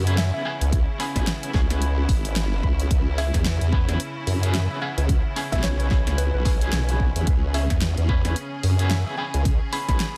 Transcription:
Already playing: F#2 C#3 C#4 E4
0.07 B3 C#4 E4 G#4, closed hi-hat
0.18 E5, snare, closed hi-hat
0.34 E5
0.45 B3 C#4 E4 G#4 G#5
0.61 C#2, closed hi-hat
0.72 kick, closed hi-hat
1.00 B3 C#4 E4 G#4 B5, open hi-hat
1.16 B1 B5, kick, snare, closed hi-hat
1.27 snare, closed hi-hat
1.43 closed hi-hat
1.54 C#2 B3 C#4 E4 G#4, kick, snare
1.70 snare, closed hi-hat
1.82 closed hi-hat
2.09 G#1, kick, open hi-hat
2.25 closed hi-hat
2.36 snare, closed hi-hat
2.63 C#2 B5, kick
2.80 closed hi-hat
2.91 C#2, kick, closed hi-hat
3.18 B3 C#4 E4 G#4 E5, open hi-hat
3.34 E2, kick, snare, closed hi-hat
3.46 snare, closed hi-hat
3.61 E2, closed hi-hat
3.72 B3 C#4 E4 B4, kick
3.88 E2, snare, closed hi-hat
4.00 closed hi-hat
4.27 F#2, open hi-hat
4.43 B3 C#4 E4 G#4, closed hi-hat
4.54 E5, snare, closed hi-hat
4.70 E5
4.81 B3 C#4 E4 G#4 F#5
4.98 C#2, closed hi-hat
5.09 kick, closed hi-hat
5.36 B3 C#4 E4 G#4, open hi-hat
5.52 B1 E5, kick, snare, closed hi-hat
5.55 snare
5.58 snare
5.61 B1 C#5, snare
5.64 snare, closed hi-hat
5.68 snare
5.72 snare
5.76 C#5, snare, closed hi-hat
5.91 B3 C#4 E4 G#4, kick, snare
6.07 C#2, snare, closed hi-hat
6.18 B4, closed hi-hat
6.34 B1 B4
6.45 B3 C#4 E4 G#4, kick, open hi-hat
6.61 B3 C#4 E4 G#4, closed hi-hat
6.73 B1, snare, closed hi-hat
6.89 closed hi-hat
7.00 kick
7.16 E2, closed hi-hat
7.27 C#2 G#4, kick, closed hi-hat
7.54 B3 C#4 E4 G#4 E5, open hi-hat
7.70 E2, kick, snare, closed hi-hat
7.82 snare, closed hi-hat
7.97 E2, closed hi-hat
8.09 B3 C#4 E4 B4, kick
8.25 E2, snare, closed hi-hat
8.36 closed hi-hat
8.63 F#2, open hi-hat
8.79 B3 C#4 E4 G#4, closed hi-hat
8.90 E5, snare, closed hi-hat
9.06 E5
9.17 B3 C#4 E4 G#4 G#5
9.34 C#2, closed hi-hat
9.45 kick, closed hi-hat
9.73 B3 C#4 E4 G#4 B5, open hi-hat
9.89 B1 B5, kick, snare, closed hi-hat
10.00 snare, closed hi-hat

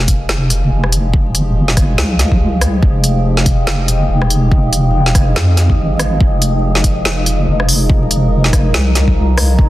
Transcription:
Already playing: F1 F3 G#3 D#4 G4
0.08 kick, closed hi-hat
0.29 F1, snare
0.50 closed hi-hat
0.71 F1
0.84 cross-stick
0.92 closed hi-hat
1.14 kick
1.35 closed hi-hat
1.68 snare
1.77 kick, cross-stick, closed hi-hat
1.98 C2, snare
2.19 snare, closed hi-hat
2.32 kick
2.61 cross-stick, closed hi-hat
2.83 F1, kick
3.04 closed hi-hat
3.37 snare
3.46 kick, closed hi-hat
3.67 F1, snare
3.88 closed hi-hat
4.09 F1
4.22 cross-stick
4.30 closed hi-hat
4.52 kick
4.73 closed hi-hat
5.06 snare
5.15 kick, cross-stick, closed hi-hat
5.36 F2, snare
5.57 snare, closed hi-hat
5.70 kick
5.78 G#1
5.99 cross-stick, closed hi-hat
6.21 F1 A#4, kick
6.42 closed hi-hat
6.75 snare
6.84 kick, closed hi-hat
7.05 F1, snare
7.26 closed hi-hat
7.47 F1
7.60 cross-stick
7.69 open hi-hat
7.90 kick
8.11 closed hi-hat
8.44 snare
8.53 kick, cross-stick, closed hi-hat
8.74 C2, snare
8.95 snare, closed hi-hat
9.08 kick
9.38 cross-stick, open hi-hat
9.59 F1, kick

